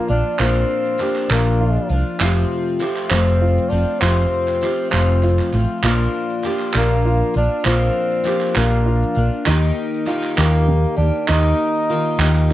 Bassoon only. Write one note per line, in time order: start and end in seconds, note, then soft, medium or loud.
0.10 0.41 D4 loud
0.39 1.30 C4 loud
1.32 1.95 A#3 medium
3.10 3.71 C4 medium
3.69 4.02 D4 loud
4.00 4.90 C4 loud
4.91 5.56 C4 medium
6.78 7.32 A#3 medium
7.37 7.64 D4 loud
7.65 8.59 C4 loud
8.57 9.25 A#3 medium
10.38 10.95 A#3 medium
10.97 11.29 D4 medium
11.28 12.53 D#4 loud